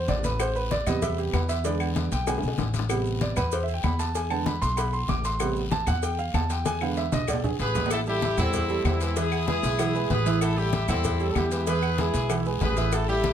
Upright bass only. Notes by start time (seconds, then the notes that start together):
0.08 A1
0.86 E2
1.33 E2
2.11 B1
2.43 B1
2.58 A1
3.37 E2
3.84 E2
4.62 B1
5.09 A1
5.87 E2
6.34 E2
7.12 B1
7.59 A1
8.37 E2
8.84 E2
9.63 B1
10.10 A1
10.88 E2
11.35 E2
12.14 B1
12.61 A1